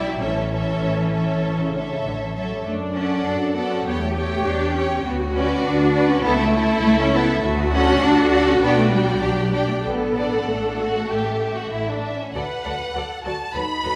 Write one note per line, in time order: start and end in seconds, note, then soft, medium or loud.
0.00 0.14 B1 medium
0.00 0.19 E4 loud
0.00 0.20 G4 medium
0.00 0.20 D5 medium
0.00 0.19 E5 medium
0.07 0.21 F#3 medium
0.20 0.75 A1 medium
0.20 1.59 E3 medium
0.20 2.35 C#4 medium
0.20 0.50 A4 soft
0.20 0.50 C#5 soft
0.20 0.50 E5 medium
0.51 1.11 A4 medium
0.51 1.11 C#5 medium
0.51 1.11 E5 medium
0.82 1.36 A1 medium
1.13 1.73 A4 medium
1.13 1.73 C#5 soft
1.13 1.73 E5 soft
1.43 1.97 A1 medium
1.60 1.75 C#3 medium
1.74 1.90 D3 medium
1.74 2.34 A4 soft
1.74 2.34 C#5 soft
1.74 2.34 E5 soft
1.91 1.96 C#3 medium
2.05 2.59 A1 medium
2.05 2.11 D3 medium
2.21 2.36 E3 medium
2.35 2.50 F#3 medium
2.35 2.65 A4 soft
2.35 2.65 C#5 soft
2.35 2.65 E5 soft
2.51 2.66 G3 medium
2.65 3.19 F#2 medium
2.65 2.74 A3 medium
2.65 3.22 D4 medium
2.95 3.26 C#4 medium
2.95 3.55 A4 soft
2.95 3.55 D5 medium
2.95 3.55 F#5 medium
3.26 3.79 F#2 medium
3.26 3.56 D4 medium
3.26 3.87 F#4 medium
3.56 3.71 B3 medium
3.56 3.86 A4 medium
3.56 3.86 D5 soft
3.56 3.86 F#5 soft
3.72 3.87 C#4 medium
3.86 4.39 E2 medium
3.86 4.01 B3 medium
3.86 4.15 G4 medium
3.86 5.06 G4 medium
3.86 4.16 C#5 soft
3.86 4.15 G5 medium
4.02 4.45 A3 medium
4.16 4.75 G4 medium
4.16 4.75 C#5 medium
4.16 4.74 G5 medium
4.46 4.98 E2 medium
4.46 4.76 D4 medium
4.75 5.05 C#4 medium
4.75 5.05 G4 medium
4.75 5.05 C#5 medium
4.75 5.05 G5 medium
5.05 5.58 D2 medium
5.05 5.14 B3 medium
5.05 6.22 F#4 medium
5.35 5.65 C#4 medium
5.35 5.94 F#4 medium
5.35 5.94 B4 medium
5.35 5.94 D5 medium
5.65 6.18 D2 medium
5.65 6.09 D4 loud
5.95 6.24 F#4 medium
5.95 6.24 B4 medium
5.95 6.24 D5 medium
6.11 6.26 C#4 loud
6.25 6.77 C#2 medium
6.25 6.40 B3 loud
6.25 6.53 E4 medium
6.25 7.44 E4 medium
6.25 6.53 A4 medium
6.25 6.54 E5 medium
6.40 6.83 A3 loud
6.54 7.12 E4 medium
6.54 7.12 A4 medium
6.54 7.13 E5 medium
6.84 7.37 C#2 medium
6.84 6.99 A3 loud
7.00 7.14 C#4 loud
7.13 7.44 B3 loud
7.13 7.43 E4 medium
7.13 7.43 A4 medium
7.13 7.44 E5 medium
7.44 7.96 D2 loud
7.44 7.73 A3 loud
7.44 9.19 F#4 loud
7.73 8.03 C#4 loud
7.73 8.31 D4 medium
7.73 8.31 A4 medium
7.73 8.31 F#5 medium
8.02 8.55 D2 medium
8.02 8.47 D4 loud
8.32 8.61 D4 medium
8.32 8.62 A4 medium
8.32 8.62 F#5 medium
8.48 8.54 C#4 loud
8.62 9.15 B1 medium
8.62 8.77 B3 loud
8.62 8.91 D4 medium
8.62 8.91 D5 medium
8.62 8.92 G5 medium
8.78 8.92 A3 loud
8.92 9.22 G3 loud
8.92 9.52 D4 medium
8.92 9.52 D5 medium
8.92 9.53 G5 medium
9.22 9.77 B1 medium
9.22 9.53 F#3 medium
9.22 9.84 G4 medium
9.53 9.59 G3 medium
9.53 9.84 D4 medium
9.53 9.84 D5 medium
9.53 9.84 G5 medium
9.69 9.75 A3 medium
9.84 10.40 A1 medium
9.84 10.46 B3 medium
9.84 11.99 A4 medium
10.16 10.41 D4 soft
10.16 10.41 D5 medium
10.16 10.77 F#5 medium
10.47 11.03 A1 medium
10.47 12.03 A3 medium
10.47 10.77 D4 medium
10.78 11.10 F#4 medium
10.78 11.09 F#5 soft
11.09 11.65 A1 medium
11.09 11.57 G4 medium
11.09 11.40 E5 soft
11.41 12.02 E5 medium
11.57 11.73 F#4 medium
11.72 12.27 A1 medium
11.72 11.88 E4 medium
11.88 12.19 D4 medium
12.03 12.34 E5 soft
12.20 12.35 C#4 medium
12.34 12.43 D2 soft
12.34 12.43 F#3 soft
12.34 12.43 F#4 soft
12.34 12.43 A4 soft
12.34 12.91 B4 medium
12.34 12.43 D5 soft
12.34 13.21 F#5 medium
12.64 12.72 D2 soft
12.64 12.73 F#3 soft
12.64 12.73 F#4 soft
12.64 12.73 A4 soft
12.64 12.73 D5 soft
12.94 13.03 D2 soft
12.94 13.03 F#3 soft
12.94 13.04 F#4 soft
12.94 13.24 A4 soft
12.94 13.04 A4 soft
12.94 13.04 D5 soft
13.24 13.33 D2 soft
13.24 13.33 F#3 soft
13.24 13.32 F#4 soft
13.24 13.33 F#4 soft
13.24 13.33 A4 soft
13.24 13.33 D5 soft
13.24 13.54 A5 medium
13.54 13.62 D#2 medium
13.54 13.63 F#3 medium
13.54 13.96 D#4 medium
13.54 13.63 F#4 soft
13.54 13.62 A4 soft
13.54 13.62 B4 soft
13.54 13.96 B5 medium
13.84 13.92 D#2 soft
13.84 13.92 F#3 soft
13.84 13.93 F#4 soft
13.84 13.92 A4 soft
13.84 13.92 B4 soft